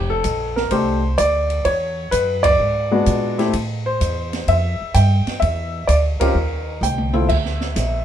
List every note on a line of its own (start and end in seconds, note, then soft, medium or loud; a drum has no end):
0.00 0.23 F1 medium
0.00 0.11 G4 medium
0.10 0.54 A4 medium
0.24 0.70 A#1 medium
0.24 kick soft
0.24 hi-hat pedal soft
0.24 ride medium
0.56 0.72 A#4 medium
0.56 snare soft
0.71 1.17 C2 medium
0.71 1.00 A3 medium
0.71 1.00 C4 medium
0.71 1.00 D4 soft
0.71 1.01 G4 medium
0.71 1.20 C5 medium
0.71 kick soft
0.71 ride medium
1.18 1.64 D2 medium
1.18 1.67 D5 loud
1.18 kick soft
1.18 hi-hat pedal medium
1.18 ride medium
1.50 ride soft
1.65 2.11 E2 medium
1.65 2.09 C#5 medium
1.65 kick soft
1.65 ride medium
2.11 2.58 F#2 medium
2.11 2.45 B4 medium
2.11 kick soft
2.11 hi-hat pedal medium
2.11 ride medium
2.43 3.34 D5 loud
2.43 kick medium
2.43 ride medium
2.59 3.05 G#2 medium
2.91 3.36 G#3 medium
2.91 3.36 B3 medium
2.91 3.36 D4 medium
2.91 3.36 F#4 medium
3.06 3.52 A#2 medium
3.06 kick soft
3.06 hi-hat pedal medium
3.06 ride medium
3.38 3.52 A3 medium
3.38 3.52 C4 medium
3.38 3.52 E4 medium
3.38 3.52 G4 medium
3.38 snare soft
3.38 ride soft
3.53 3.99 A2 medium
3.53 kick soft
3.53 ride medium
3.86 4.50 C5 medium
4.01 4.46 E2 medium
4.01 kick soft
4.01 hi-hat pedal medium
4.01 ride medium
4.33 snare soft
4.33 ride soft
4.48 4.78 F2 medium
4.48 4.97 E5 loud
4.48 kick soft
4.48 ride medium
4.81 muted upright bass stroke soft
4.94 5.25 G2 medium
4.94 5.38 G5 loud
4.94 kick soft
4.94 hi-hat pedal medium
4.94 ride medium
5.27 muted upright bass stroke soft
5.27 snare soft
5.27 ride soft
5.40 5.87 E2 medium
5.40 5.89 E5 medium
5.40 kick soft
5.40 ride medium
5.87 6.18 D2 medium
5.87 5.95 D5 medium
5.87 kick soft
5.87 hi-hat pedal medium
5.87 ride medium
6.20 6.34 C4 medium
6.20 6.34 C#4 medium
6.20 6.34 F4 medium
6.20 6.34 G4 medium
6.20 6.84 A#4 medium
6.20 muted upright bass stroke soft
6.20 kick medium
6.20 ride medium
6.34 6.80 D#2 medium
6.81 7.27 C2 medium
6.81 7.31 G5 medium
6.81 hi-hat pedal medium
6.81 mid tom soft
6.98 mid tom soft
7.13 7.27 C4 medium
7.13 7.27 E4 medium
7.13 7.28 F4 medium
7.13 7.28 A4 medium
7.13 mid tom medium
7.29 7.75 D2 medium
7.29 8.04 E5 medium
7.29 kick medium
7.29 crash medium
7.45 snare soft
7.61 snare soft
7.76 8.05 A#1 medium
7.76 kick soft
7.76 snare soft
7.76 hi-hat pedal medium
7.76 ride medium